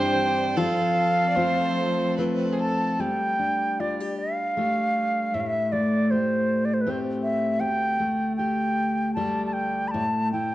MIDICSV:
0, 0, Header, 1, 5, 480
1, 0, Start_track
1, 0, Tempo, 780234
1, 352, Time_signature, 3, 2, 24, 8
1, 837, Tempo, 811908
1, 2277, Tempo, 764331
1, 5157, Tempo, 783290
1, 6484, End_track
2, 0, Start_track
2, 0, Title_t, "Flute"
2, 0, Program_c, 0, 73
2, 0, Note_on_c, 0, 79, 81
2, 358, Note_on_c, 0, 77, 92
2, 367, Note_off_c, 0, 79, 0
2, 1326, Note_off_c, 0, 77, 0
2, 1570, Note_on_c, 0, 81, 71
2, 1809, Note_on_c, 0, 79, 84
2, 1818, Note_off_c, 0, 81, 0
2, 2279, Note_on_c, 0, 74, 69
2, 2289, Note_off_c, 0, 79, 0
2, 2524, Note_on_c, 0, 77, 77
2, 2533, Note_off_c, 0, 74, 0
2, 3249, Note_on_c, 0, 76, 75
2, 3259, Note_off_c, 0, 77, 0
2, 3287, Note_on_c, 0, 77, 66
2, 3296, Note_off_c, 0, 76, 0
2, 3327, Note_on_c, 0, 76, 82
2, 3336, Note_off_c, 0, 77, 0
2, 3486, Note_on_c, 0, 74, 66
2, 3496, Note_off_c, 0, 76, 0
2, 3727, Note_on_c, 0, 72, 62
2, 3737, Note_off_c, 0, 74, 0
2, 4069, Note_on_c, 0, 74, 61
2, 4079, Note_off_c, 0, 72, 0
2, 4123, Note_on_c, 0, 72, 55
2, 4133, Note_off_c, 0, 74, 0
2, 4169, Note_on_c, 0, 71, 55
2, 4178, Note_off_c, 0, 72, 0
2, 4230, Note_on_c, 0, 72, 56
2, 4239, Note_off_c, 0, 71, 0
2, 4282, Note_off_c, 0, 72, 0
2, 4432, Note_on_c, 0, 76, 75
2, 4666, Note_on_c, 0, 79, 90
2, 4675, Note_off_c, 0, 76, 0
2, 5141, Note_off_c, 0, 79, 0
2, 5145, Note_on_c, 0, 79, 77
2, 5604, Note_off_c, 0, 79, 0
2, 5622, Note_on_c, 0, 81, 75
2, 5809, Note_off_c, 0, 81, 0
2, 5821, Note_on_c, 0, 81, 52
2, 5860, Note_on_c, 0, 79, 70
2, 5869, Note_off_c, 0, 81, 0
2, 6074, Note_on_c, 0, 83, 62
2, 6083, Note_off_c, 0, 79, 0
2, 6091, Note_on_c, 0, 81, 83
2, 6100, Note_off_c, 0, 83, 0
2, 6345, Note_off_c, 0, 81, 0
2, 6349, Note_on_c, 0, 79, 63
2, 6484, Note_off_c, 0, 79, 0
2, 6484, End_track
3, 0, Start_track
3, 0, Title_t, "Fiddle"
3, 0, Program_c, 1, 110
3, 0, Note_on_c, 1, 72, 117
3, 349, Note_on_c, 1, 69, 85
3, 358, Note_off_c, 1, 72, 0
3, 788, Note_off_c, 1, 69, 0
3, 791, Note_on_c, 1, 74, 58
3, 830, Note_on_c, 1, 72, 87
3, 839, Note_off_c, 1, 74, 0
3, 1310, Note_off_c, 1, 72, 0
3, 1313, Note_on_c, 1, 71, 70
3, 1525, Note_on_c, 1, 68, 35
3, 1534, Note_off_c, 1, 71, 0
3, 1561, Note_on_c, 1, 69, 55
3, 1570, Note_off_c, 1, 68, 0
3, 1803, Note_off_c, 1, 69, 0
3, 6484, End_track
4, 0, Start_track
4, 0, Title_t, "Steel-string acoustic guitar"
4, 0, Program_c, 2, 25
4, 0, Note_on_c, 2, 43, 83
4, 0, Note_on_c, 2, 55, 60
4, 0, Note_on_c, 2, 60, 55
4, 0, Note_on_c, 2, 62, 56
4, 350, Note_off_c, 2, 43, 0
4, 350, Note_on_c, 2, 53, 73
4, 351, Note_off_c, 2, 62, 0
4, 353, Note_on_c, 2, 65, 63
4, 402, Note_off_c, 2, 55, 0
4, 836, Note_off_c, 2, 65, 0
4, 837, Note_off_c, 2, 60, 0
4, 837, Note_on_c, 2, 60, 51
4, 842, Note_on_c, 2, 57, 51
4, 845, Note_on_c, 2, 65, 50
4, 1316, Note_off_c, 2, 60, 0
4, 1322, Note_off_c, 2, 65, 0
4, 1323, Note_on_c, 2, 60, 49
4, 1325, Note_off_c, 2, 57, 0
4, 1328, Note_on_c, 2, 57, 47
4, 1332, Note_on_c, 2, 65, 46
4, 1801, Note_off_c, 2, 53, 0
4, 1804, Note_on_c, 2, 55, 51
4, 1854, Note_off_c, 2, 60, 0
4, 1858, Note_off_c, 2, 65, 0
4, 2036, Note_off_c, 2, 57, 0
4, 2039, Note_on_c, 2, 62, 42
4, 2277, Note_on_c, 2, 65, 45
4, 2407, Note_off_c, 2, 65, 0
4, 2407, Note_on_c, 2, 67, 39
4, 2762, Note_off_c, 2, 62, 0
4, 2764, Note_on_c, 2, 57, 45
4, 2767, Note_off_c, 2, 67, 0
4, 2769, Note_on_c, 2, 62, 38
4, 2774, Note_on_c, 2, 67, 47
4, 3248, Note_on_c, 2, 45, 55
4, 3267, Note_off_c, 2, 55, 0
4, 3299, Note_off_c, 2, 62, 0
4, 3490, Note_off_c, 2, 57, 0
4, 3490, Note_on_c, 2, 57, 41
4, 3509, Note_off_c, 2, 67, 0
4, 3734, Note_on_c, 2, 67, 51
4, 4203, Note_on_c, 2, 60, 49
4, 4204, Note_off_c, 2, 57, 0
4, 4207, Note_off_c, 2, 67, 0
4, 4207, Note_on_c, 2, 57, 44
4, 4209, Note_on_c, 2, 67, 47
4, 4670, Note_on_c, 2, 38, 55
4, 4674, Note_off_c, 2, 45, 0
4, 4720, Note_off_c, 2, 60, 0
4, 4911, Note_off_c, 2, 57, 0
4, 4914, Note_on_c, 2, 57, 44
4, 4933, Note_off_c, 2, 67, 0
4, 5161, Note_on_c, 2, 67, 51
4, 5634, Note_off_c, 2, 67, 0
4, 5636, Note_on_c, 2, 55, 51
4, 5639, Note_off_c, 2, 57, 0
4, 5642, Note_on_c, 2, 57, 42
4, 5642, Note_on_c, 2, 67, 59
4, 6111, Note_off_c, 2, 38, 0
4, 6112, Note_on_c, 2, 45, 59
4, 6164, Note_off_c, 2, 55, 0
4, 6166, Note_off_c, 2, 67, 0
4, 6352, Note_off_c, 2, 57, 0
4, 6354, Note_on_c, 2, 64, 40
4, 6484, Note_off_c, 2, 45, 0
4, 6484, Note_off_c, 2, 64, 0
4, 6484, End_track
5, 0, Start_track
5, 0, Title_t, "String section"
5, 0, Program_c, 3, 48
5, 0, Note_on_c, 3, 43, 78
5, 0, Note_on_c, 3, 52, 76
5, 0, Note_on_c, 3, 62, 68
5, 0, Note_on_c, 3, 72, 89
5, 339, Note_off_c, 3, 43, 0
5, 339, Note_off_c, 3, 52, 0
5, 341, Note_off_c, 3, 62, 0
5, 341, Note_off_c, 3, 72, 0
5, 347, Note_on_c, 3, 69, 72
5, 348, Note_on_c, 3, 53, 65
5, 351, Note_on_c, 3, 60, 59
5, 1790, Note_off_c, 3, 69, 0
5, 1791, Note_off_c, 3, 53, 0
5, 1792, Note_off_c, 3, 60, 0
5, 6484, End_track
0, 0, End_of_file